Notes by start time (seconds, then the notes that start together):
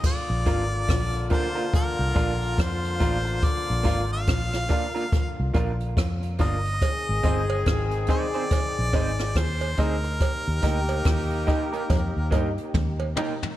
0.03 D3 A#3 F4 D5, kick, crash
0.30 A#1
0.46 G#1 A#3 D4 F4 A#4 D5 F5, kick, closed hi-hat
0.88 A#1, kick, cross-stick, closed hi-hat
1.14 closed hi-hat
1.30 A#3 D4 F4 A#4 C5 D5 F5, kick, closed hi-hat
1.55 A#3 D4 F4 A#4, closed hi-hat
1.74 A#4, kick, closed hi-hat
1.99 C2
2.15 A#1 A#3 D4 F4 A#4 D5 F5, kick, closed hi-hat
2.42 closed hi-hat
2.58 F2 C5, kick, cross-stick, closed hi-hat
2.85 closed hi-hat
3.00 A1 A#3 D4 F4 A#4 D5 F5, kick, closed hi-hat
3.25 muted clean electric guitar stroke, closed hi-hat
3.42 D5, kick, closed hi-hat
3.70 A#1
3.83 G#1 A#3 D4 F4 A#4 D5 F5, kick, closed hi-hat
4.13 F5
4.27 A#1, kick, cross-stick, closed hi-hat
4.52 cross-stick, closed hi-hat
4.69 A#3 D4 F4 A#4 D5 F5, kick, closed hi-hat
4.95 A#3 D4 F4 A#4, closed hi-hat
5.12 kick, closed hi-hat
5.40 C2
5.54 A#1 A#3 D4 F4 A#4 D5 F5, kick, closed hi-hat
5.80 closed hi-hat
5.97 F2, kick, cross-stick, closed hi-hat
6.23 closed hi-hat
6.38 G1 A#3 D4 F4 A#4 D5 D#5 F5, kick, closed hi-hat
6.65 closed hi-hat
6.81 D#3 C4 G#4, kick, closed hi-hat, cowbell
7.09 G#1
7.23 G1 C4 D#4 G#4 C5 D#5, kick, closed hi-hat
7.50 cowbell
7.66 G#1, kick, cross-stick, closed hi-hat
7.91 closed hi-hat
8.07 C4 D#4 G#4 C5 D#5, kick, closed hi-hat
8.11 D5
8.34 C4 D#4 G#4 C5, closed hi-hat
8.51 kick, closed hi-hat, cowbell
8.79 A#1
8.92 G#1 C4 D#4 G#4 C5 D#5, kick, closed hi-hat, cowbell
9.18 cross-stick, closed hi-hat
9.35 D#2 C5, kick, cross-stick, closed hi-hat
9.61 closed hi-hat, cowbell
9.77 D2 C4 D#4 G#4 A#4 C5 D#5, kick, closed hi-hat
10.04 muted clean electric guitar stroke, closed hi-hat
10.20 A#3 D#4 G4, kick, closed hi-hat, cowbell
10.48 D#2
10.62 D2 A#3 D#4 G4 A#4 D#5, kick, closed hi-hat
10.89 cowbell
11.05 D#2, kick, cross-stick, closed hi-hat
11.30 closed hi-hat
11.46 A#3 D#4 G4 A#4 D#5, kick, closed hi-hat
11.73 A#3 D#4 G4 A#4, closed hi-hat
11.90 F2, kick, closed hi-hat, cowbell
12.17 D#2
12.31 G2 A#3 D#4 G4 A#4 D#5, kick, closed hi-hat, cowbell
12.58 closed hi-hat
12.74 D#2, kick, high tom
13.00 cowbell
13.16 A#3 D#4 G4 A#4 D#5, mid tom
13.43 floor tom